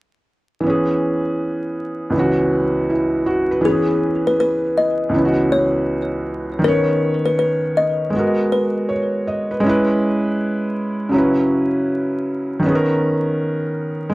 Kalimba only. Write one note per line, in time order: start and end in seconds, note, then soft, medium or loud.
3.65 4.22 G#4 medium
4.27 4.38 B4 medium
4.40 4.73 B4 medium
4.78 5.11 D#5 medium
5.52 5.73 C#5 medium
6.64 7.26 A#4 loud
7.26 7.37 B4 medium
7.39 7.72 B4 medium
7.77 8.10 D#5 medium
8.52 8.73 B4 medium